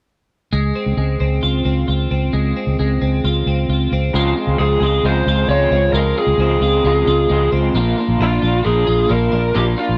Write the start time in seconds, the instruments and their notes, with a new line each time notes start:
0.53 fingered electric bass C#2, clean electric guitar G#3
0.75 clean electric guitar C4
0.86 fingered electric bass C#2
0.97 fingered electric bass C#2, clean electric guitar G#3
1.20 fingered electric bass C#2, clean electric guitar C4
1.43 fingered electric bass C#2, clean electric guitar F4
1.65 fingered electric bass C#2, clean electric guitar C4
1.88 fingered electric bass C#2, clean electric guitar F4
2.11 fingered electric bass C#2, clean electric guitar C4
2.33 fingered electric bass C#2, clean electric guitar G#3
2.57 clean electric guitar C4
2.67 fingered electric bass C#2
2.79 fingered electric bass C#2, clean electric guitar G#3
3.02 fingered electric bass C#2, clean electric guitar C4
3.24 fingered electric bass C#2, clean electric guitar F4
3.46 fingered electric bass C#2, clean electric guitar C4
3.69 fingered electric bass C#2, clean electric guitar F4
3.92 fingered electric bass C#2, clean electric guitar C4
4.13 fingered electric bass C#2, clean electric guitar C#3 F3 G#3 C4 F4
4.36 clean electric guitar G#3 C4 F4
4.47 fingered electric bass C#2
4.59 fingered electric bass C#2, clean electric guitar F3 G#3 C4 F4, lead electric guitar G#4
4.81 fingered electric bass C#2, clean electric guitar G#3 C4 F4
5.03 fingered electric bass C#2, clean electric guitar C#3 F3 G#3 C4 F4, lead electric guitar C5
5.26 fingered electric bass C#2, clean electric guitar G#3 C4 F4
5.48 fingered electric bass C#2, clean electric guitar F3 G#3 C4 F4, lead electric guitar C#5
5.71 fingered electric bass C#2, clean electric guitar G#3 C4 F4
5.93 fingered electric bass C#2, clean electric guitar C#3 F3 G#3 C4, lead electric guitar A#4
5.97 clean electric guitar F4
6.18 clean electric guitar G#3 C4 F4, lead electric guitar G#4
6.27 fingered electric bass C#2
6.38 fingered electric bass C#2, clean electric guitar F3 G#3 C4
6.42 clean electric guitar F4
6.61 fingered electric bass C#2, clean electric guitar G#3 C4 F4
6.84 fingered electric bass C#2, clean electric guitar C#3 F3 G#3 C4 F4
7.07 fingered electric bass C#2, clean electric guitar G#3 C4 F4
7.30 fingered electric bass C#2, clean electric guitar F3 G#3 C4 F4
7.52 fingered electric bass C#2, clean electric guitar G#3 C4 F4
7.74 fingered electric bass A#1, clean electric guitar A#2 F3 A#3 D4 F4
7.98 clean electric guitar A#3 D4 F4
8.08 fingered electric bass A#1
8.20 fingered electric bass A#1, clean electric guitar F3 A#3 D4 F4, lead electric guitar F4
8.43 fingered electric bass A#1, clean electric guitar A#3 D4 F4
8.65 fingered electric bass A#1, clean electric guitar A#2 F3 A#3 D4 F4, lead electric guitar G#4
8.87 fingered electric bass A#1, clean electric guitar A#3 D4 F4
9.10 fingered electric bass A#1, clean electric guitar F3 A#3 D4 F4, lead electric guitar A#4
9.33 fingered electric bass A#1, clean electric guitar A#3 D4 F4
9.55 fingered electric bass A#1, clean electric guitar A#2 F3 A#3 D4 F4, lead electric guitar G4
9.78 clean electric guitar A#3 D4 F4, lead electric guitar F4
9.89 fingered electric bass A#1